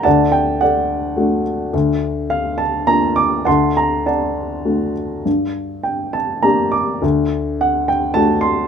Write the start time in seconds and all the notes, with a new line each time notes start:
0.03 D2 D5 F#5 A5
0.32 G5
0.61 A4 D5 F#5
1.17 A3 D4 F#4
1.74 D2
2.30 F5
2.58 A5
2.87 A#3 D4 F4 A#5
3.16 D6
3.45 D2 F#5 A5 C6
3.77 A#5
4.06 D5 F#5 A5
4.65 A3 D4 F#4
5.25 G2
5.83 G5
6.13 A5
6.42 A#3 D4 G4 A#5
6.72 D6
7.02 D2
7.61 F#5
7.88 G5
8.14 A3 D4 F#4 A5
8.41 C6